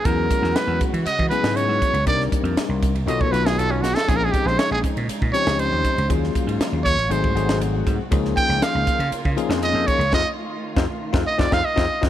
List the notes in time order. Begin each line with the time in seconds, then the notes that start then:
0.02 E2 C#3 F#3 G#3 B3 C#4 F#4 A#4, kick, hi-hat pedal, ride
0.06 E4 G#4
0.31 kick, hi-hat pedal, ride
0.42 E2, snare
0.56 B4, snare, hi-hat pedal, ride
0.67 E2
0.81 kick, hi-hat pedal, ride
0.93 E3, ride
1.05 D#5, muted slap bass stroke, hi-hat pedal, ride
1.19 E3, kick
1.29 F#3 B3 C#4 E4 G#4 B4, hi-hat pedal, ride
1.44 G#2, snare
1.56 C#5, hi-hat pedal, ride
1.69 G#2
1.82 kick, hi-hat pedal, ride
1.93 C#2, ride
2.05 C2 C3 G3 A#3 C4 D4 D#4 A#4 D5, kick, hi-hat pedal, ride
2.21 snare
2.32 kick, hi-hat pedal, ride
2.43 F2, ride
2.56 muted slap bass stroke, snare, hi-hat pedal, ride
2.69 C2
2.83 kick, hi-hat pedal, ride
2.95 C2, ride
3.07 B1 D#3 F#3 A3 B3 D#4 F4 A4 D#5, hi-hat pedal, ride
3.21 B2 C#5, kick
3.31 B1 F#3 B3 D#4 F4 B4, snare, hi-hat pedal, ride
3.46 G#4, snare, ride
3.58 B1 A4, hi-hat pedal, ride
3.71 C#4
3.82 B1 F#4, snare, hi-hat pedal
3.95 A4, snare
4.06 A#1 C#3 F3 G#3 C4 C#4 D#4 G#4, kick, hi-hat pedal, ride
4.16 A#4
4.25 G#4
4.31 G4, kick, hi-hat pedal, ride
4.46 A#1 C5, snare
4.58 C#5, snare, hi-hat pedal, ride
4.71 A#1 G#4
4.84 kick, hi-hat pedal, ride
4.97 A#2, ride
5.08 muted slap bass stroke, hi-hat pedal, ride
5.22 A#2, kick
5.33 F3 C4 C#4 D#4 G4 C#5, snare, hi-hat pedal, ride
5.47 C#2, snare
5.59 C5, hi-hat pedal, ride
5.72 D#2
5.84 kick, hi-hat pedal, ride
5.98 C#2, ride
6.08 D#2 C#3 F#3 A#3 C#4 F4 G#4, kick, hi-hat pedal, ride
6.24 snare
6.35 muted slap bass stroke, kick, hi-hat pedal, ride
6.47 G#2, ride
6.59 muted slap bass stroke, snare, hi-hat pedal, ride
6.72 D#2
6.84 C#5, kick, hi-hat pedal, ride
6.97 A1, ride
7.09 G#1 C3 F#3 A3 C4 D#4 F#4 G#4 C5, hi-hat pedal, ride
7.24 G#2, kick
7.35 G#1 F#3 A3 C4 D#4 G#4, hi-hat pedal, ride
7.49 snare, ride
7.60 G#1, hi-hat pedal, ride
7.87 G#2, kick, hi-hat pedal, ride
8.11 C#2 C#3 F3 A#3 C#4 D#4 F4 G#4, kick, hi-hat pedal, ride
8.25 snare
8.37 G5, kick, hi-hat pedal, ride
8.49 C#2, snare
8.62 F5, snare, hi-hat pedal, ride
8.75 C#2
8.87 kick, hi-hat pedal, ride
8.99 C#3, ride
9.11 muted slap bass stroke, hi-hat pedal, ride
9.25 C#3, kick
9.37 F3 A#3 C#4 D#4 G#4, hi-hat pedal, ride
9.49 F2, snare
9.62 D#5, hi-hat pedal, ride
9.74 F2
9.87 C#5, kick, hi-hat pedal, ride
9.99 C#2, ride
10.12 F2 D#3 A3 C4 D#4 F4 D#5, kick, snare
10.76 F2 C4 D#4 F4, kick, snare
11.13 F2 C4 D#4 F4, kick, snare
11.27 D#5
11.38 F2 C4 D#4 F4 D5, kick, snare
11.51 F2 C4 D#4 F4 F5, kick, snare
11.65 D#5
11.76 F2 C4 D#4 F4, kick, snare
12.02 F2 C4 D#4 F4, kick, snare